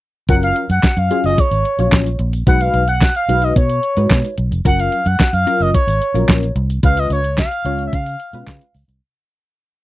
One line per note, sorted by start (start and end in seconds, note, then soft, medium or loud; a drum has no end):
0.29 0.51 F#1 loud
0.29 0.65 F#3 medium
0.29 0.65 C#4 medium
0.29 0.65 F4 medium
0.29 0.65 A#4 medium
0.29 0.35 F#5 loud
0.29 kick loud
0.29 closed hi-hat medium
0.29 shaker medium
0.43 0.56 F5 loud
0.43 closed hi-hat medium
0.43 shaker soft
0.56 closed hi-hat medium
0.69 0.81 F#2 loud
0.69 1.00 F#5 medium
0.69 closed hi-hat soft
0.69 shaker medium
0.83 muted fingered electric bass stroke soft
0.83 kick loud
0.83 snare loud
0.83 clap medium
0.83 closed hi-hat medium
0.83 shaker medium
0.97 1.08 F#2 loud
0.97 1.25 F5 loud
0.97 closed hi-hat soft
0.97 shaker medium
1.10 1.41 F#3 medium
1.10 1.41 C#4 medium
1.10 1.41 F4 medium
1.10 1.41 G#4 medium
1.10 closed hi-hat medium
1.10 shaker medium
1.24 1.35 F#1 medium
1.24 1.41 D#5 medium
1.24 closed hi-hat soft
1.24 shaker soft
1.38 2.21 C#5 medium
1.38 kick loud
1.38 closed hi-hat loud
1.38 shaker medium
1.51 1.63 G#1 medium
1.51 closed hi-hat medium
1.51 shaker soft
1.65 closed hi-hat medium
1.79 1.90 A#1 medium
1.79 2.09 F#3 medium
1.79 2.09 C#4 medium
1.79 2.09 F4 medium
1.79 2.09 C#5 medium
1.79 closed hi-hat medium
1.79 shaker medium
1.92 2.15 A#1 medium
1.92 kick loud
1.92 snare loud
1.92 clap loud
1.92 closed hi-hat loud
1.92 shaker medium
2.06 closed hi-hat medium
2.06 shaker medium
2.19 2.42 A#1 medium
2.19 closed hi-hat medium
2.33 closed hi-hat medium
2.33 shaker soft
2.47 2.69 B1 loud
2.47 2.83 G#3 medium
2.47 2.83 D#4 medium
2.47 2.83 F#4 medium
2.47 2.83 B4 medium
2.47 2.63 F#5 loud
2.47 kick loud
2.47 closed hi-hat medium
2.47 shaker medium
2.61 2.88 F5 loud
2.61 closed hi-hat medium
2.61 shaker medium
2.74 3.08 B1 loud
2.74 closed hi-hat medium
2.87 3.14 F#5 loud
2.87 closed hi-hat medium
2.87 shaker medium
3.01 kick loud
3.01 snare loud
3.01 clap medium
3.01 closed hi-hat medium
3.01 shaker medium
3.15 3.45 F5 medium
3.15 closed hi-hat soft
3.15 shaker soft
3.28 3.51 B1 medium
3.28 3.59 G#3 medium
3.28 3.59 D#4 medium
3.28 3.59 F#4 medium
3.28 3.59 B4 medium
3.28 closed hi-hat medium
3.28 shaker medium
3.42 3.57 D#5 medium
3.42 closed hi-hat soft
3.42 shaker soft
3.56 3.79 B2 loud
3.56 4.35 C#5 medium
3.56 kick loud
3.56 closed hi-hat medium
3.56 shaker medium
3.70 closed hi-hat soft
3.70 shaker medium
3.83 closed hi-hat medium
3.97 4.08 G#2 medium
3.97 4.27 G#3 medium
3.97 4.27 D#4 medium
3.97 4.27 F#4 medium
3.97 4.27 B4 medium
3.97 closed hi-hat soft
3.97 shaker medium
4.10 4.22 B2 loud
4.10 kick loud
4.10 snare loud
4.10 clap loud
4.10 closed hi-hat medium
4.10 shaker medium
4.24 closed hi-hat medium
4.24 shaker medium
4.38 4.49 B1 medium
4.38 closed hi-hat medium
4.51 4.63 F1 medium
4.51 closed hi-hat medium
4.51 shaker soft
4.65 4.88 F#1 loud
4.65 5.01 F#3 medium
4.65 5.01 C#4 medium
4.65 5.01 F4 medium
4.65 5.01 A#4 medium
4.65 4.81 F#5 loud
4.65 kick loud
4.65 closed hi-hat loud
4.65 shaker medium
4.79 5.08 F5 loud
4.79 closed hi-hat medium
4.79 shaker medium
4.92 closed hi-hat medium
5.05 5.17 F#2 loud
5.05 5.33 F#5 medium
5.05 closed hi-hat soft
5.05 shaker soft
5.19 muted fingered electric bass stroke soft
5.19 kick loud
5.19 snare loud
5.19 clap medium
5.19 closed hi-hat medium
5.19 shaker medium
5.33 5.44 F#2 medium
5.33 5.63 F5 medium
5.33 closed hi-hat soft
5.33 shaker soft
5.46 5.77 F#3 medium
5.46 5.77 C#4 medium
5.46 5.77 F4 medium
5.46 5.77 A#4 medium
5.46 closed hi-hat medium
5.46 shaker medium
5.60 5.72 F#1 medium
5.60 5.74 D#5 medium
5.60 closed hi-hat soft
5.60 shaker soft
5.74 6.52 C#5 medium
5.74 kick loud
5.74 closed hi-hat loud
5.74 shaker medium
5.87 5.99 G#1 medium
5.87 closed hi-hat medium
5.87 shaker medium
6.02 closed hi-hat medium
6.14 6.26 A#1 medium
6.14 6.45 F#3 medium
6.14 6.45 C#4 medium
6.14 6.45 F4 medium
6.14 6.45 A#4 medium
6.14 closed hi-hat soft
6.14 shaker medium
6.29 6.51 A#1 loud
6.29 kick loud
6.29 snare loud
6.29 clap loud
6.29 closed hi-hat medium
6.29 shaker medium
6.42 closed hi-hat medium
6.42 shaker medium
6.55 6.78 C2 medium
6.55 closed hi-hat medium
6.70 closed hi-hat medium
6.70 shaker soft
6.83 7.06 C#2 medium
6.83 7.19 G#3 medium
6.83 7.19 C#4 medium
6.83 7.19 F4 medium
6.83 7.20 B4 medium
6.83 7.00 F5 loud
6.83 kick loud
6.83 closed hi-hat medium
6.83 shaker medium
6.97 7.12 D#5 loud
6.97 closed hi-hat medium
6.97 shaker medium
7.10 7.44 C#2 medium
7.10 7.37 C#5 loud
7.10 closed hi-hat medium
7.10 shaker medium
7.23 closed hi-hat soft
7.23 shaker medium
7.38 7.83 F5 loud
7.38 kick loud
7.38 snare loud
7.38 clap medium
7.38 closed hi-hat medium
7.38 shaker medium
7.52 closed hi-hat soft
7.52 shaker soft
7.65 7.87 C#2 medium
7.65 7.95 G#3 medium
7.65 7.95 C#4 medium
7.65 7.95 F4 medium
7.65 7.96 C#5 medium
7.65 closed hi-hat medium
7.79 closed hi-hat soft
7.79 shaker soft
7.87 7.96 E5 medium
7.93 8.15 C#3 loud
7.93 8.75 F5 loud
7.93 kick loud
7.93 closed hi-hat loud
7.93 shaker medium
8.06 closed hi-hat medium
8.06 shaker soft
8.20 closed hi-hat medium
8.20 shaker soft
8.33 8.45 B2 medium
8.33 8.64 G#3 medium
8.33 8.64 C#4 medium
8.33 8.64 F4 medium
8.33 8.64 B4 medium
8.33 closed hi-hat medium
8.33 shaker medium
8.47 8.58 C#3 medium
8.47 kick loud
8.47 snare loud
8.47 clap loud
8.47 closed hi-hat loud
8.47 shaker medium
8.61 closed hi-hat medium
8.61 shaker medium
8.74 8.86 C#2 medium
8.74 open hi-hat medium
8.74 shaker medium
8.88 8.99 C2 medium
8.88 closed hi-hat medium
8.88 shaker soft